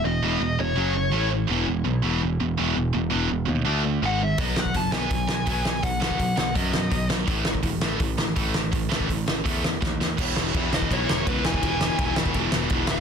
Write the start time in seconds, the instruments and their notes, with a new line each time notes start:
0.05 picked electric bass E1, overdriven electric guitar E2 B2, lead electric guitar D#5
0.22 picked electric bass E1, overdriven electric guitar E2 B2 E3
0.40 picked electric bass E1, overdriven electric guitar E2 B2
0.59 picked electric bass E1, overdriven electric guitar E2 B2, lead electric guitar C#5
0.76 picked electric bass F#1, overdriven electric guitar F#2 C#3 F#3
0.96 overdriven electric guitar F#2 C#3
1.12 picked electric bass A1, overdriven electric guitar A2 E3 A3
1.31 overdriven electric guitar A2 E3
1.49 picked electric bass E1, overdriven electric guitar E2 B2 E3
1.66 picked electric bass E1, overdriven electric guitar E2 B2
1.84 picked electric bass B1, overdriven electric guitar E2 B2
2.03 picked electric bass E1, overdriven electric guitar E2 B2 E3
2.22 picked electric bass E1, overdriven electric guitar E2 B2
2.40 picked electric bass E1, overdriven electric guitar E2 B2
2.58 picked electric bass E1, overdriven electric guitar E2 B2 E3
2.76 picked electric bass E1, overdriven electric guitar E2 B2
2.94 picked electric bass E1, overdriven electric guitar E2 B2
3.10 picked electric bass E1, overdriven electric guitar E2 B2 E3
3.30 picked electric bass E1, overdriven electric guitar E2 B2
3.48 picked electric bass D#2, overdriven electric guitar E2 B2
3.65 picked electric bass D2, overdriven electric guitar D3 A3 D4
3.83 overdriven electric guitar D3 A3
4.02 picked electric bass G#1, overdriven electric guitar G#2 D#3 G#3, lead electric guitar F#5
4.21 overdriven electric guitar G#2 D#3, lead electric guitar E5
4.38 picked electric bass B1, overdriven electric guitar B2 F#3 B3, lead electric guitar D#5, kick, open hi-hat
4.56 picked electric bass B1, overdriven electric guitar B2 F#3, lead electric guitar F#5, snare
4.66 kick
4.74 picked electric bass F#1, overdriven electric guitar B2 F#3, lead electric guitar A5, kick, open hi-hat
4.92 picked electric bass B1, overdriven electric guitar B2 F#3 B3, lead electric guitar G#5, snare
5.10 picked electric bass B1, overdriven electric guitar B2 F#3, kick, open hi-hat
5.28 picked electric bass B1, distorted electric guitar F#3, snare
5.32 overdriven electric guitar B2 F#3
5.47 picked electric bass B1, overdriven electric guitar B2 F#3 B3, kick, open hi-hat
5.65 picked electric bass B1, overdriven electric guitar B2 F#3, snare
5.83 picked electric bass B1, overdriven electric guitar B2 F#3, lead electric guitar F#5, kick, open hi-hat
6.01 picked electric bass B1, overdriven electric guitar B2 F#3 B3, lead electric guitar F#5, snare
6.11 kick
6.19 picked electric bass B1, overdriven electric guitar B2 F#3, kick, open hi-hat
6.37 picked electric bass B1, overdriven electric guitar B2 F#3, lead electric guitar F#5, snare
6.55 picked electric bass F#2, overdriven electric guitar B2 F#3 B3, lead electric guitar D#5, kick, open hi-hat
6.73 overdriven electric guitar B2 F#3, snare
6.91 picked electric bass B1, overdriven electric guitar B2 F#3, kick, open hi-hat
7.09 overdriven electric guitar B2 F#3, snare
7.26 picked electric bass A1, overdriven electric guitar A2 E3 A3, kick, open hi-hat
7.45 picked electric bass A1, overdriven electric guitar A2 E3, snare
7.55 kick
7.63 picked electric bass E1, overdriven electric guitar A2 E3, kick, open hi-hat
7.81 picked electric bass A1, overdriven electric guitar A2 E3 A3, snare
8.00 picked electric bass A1, overdriven electric guitar A2 E3, kick, open hi-hat
8.17 picked electric bass A1, overdriven electric guitar A2 E3, snare
8.36 picked electric bass A1, overdriven electric guitar A2 E3 A3, kick, open hi-hat
8.54 picked electric bass A1, overdriven electric guitar A2 E3, snare
8.72 picked electric bass A1, overdriven electric guitar A2 E3, kick, open hi-hat
8.91 picked electric bass A1, overdriven electric guitar A2 E3 A3, snare
9.00 kick
9.09 picked electric bass A1, overdriven electric guitar A2 E3, kick, open hi-hat
9.27 picked electric bass A1, overdriven electric guitar A2 E3, snare
9.45 picked electric bass E2, overdriven electric guitar A2 E3 A3, kick, open hi-hat
9.64 overdriven electric guitar A2 E3, snare
9.82 picked electric bass D#2, overdriven electric guitar A2 E3, kick, snare
10.00 overdriven electric guitar A2 E3, snare
10.18 picked electric bass E1, overdriven electric guitar E2 B2 E3, kick, crash
10.36 picked electric bass E1, overdriven electric guitar E2 B2 E3, snare
10.54 overdriven electric guitar E2 B2 E3, picked electric bass E2, kick, ride
10.72 picked electric bass E1, overdriven electric guitar E2 B2 E3, lead electric guitar D#5, snare
10.82 kick
10.90 picked electric bass B1, overdriven electric guitar E2 B2 E3, lead electric guitar C#5, kick, ride
11.09 picked electric bass E1, overdriven electric guitar E2 B2 E3, snare
11.27 picked electric bass C#2, overdriven electric guitar E2 B2 E3, lead electric guitar B4, kick, ride
11.45 picked electric bass E1, overdriven electric guitar E2 B2 E3, lead electric guitar G#5, snare
11.54 kick
11.63 picked electric bass E1, overdriven electric guitar E2 B2 E3, kick, ride
11.81 overdriven electric guitar E2 B2 E3, snare
11.99 picked electric bass E1, overdriven electric guitar E2 B2 E3, kick, ride
12.16 picked electric bass E1, overdriven electric guitar E2 B2 E3, snare
12.26 kick
12.34 picked electric bass E1, overdriven electric guitar E2 B2 E3, kick, ride
12.52 picked electric bass E1, overdriven electric guitar E2 B2 E3, snare
12.70 picked electric bass E1, overdriven electric guitar E2 B2 E3, kick, ride
12.87 overdriven electric guitar E2 B2 E3, lead electric guitar F#5, snare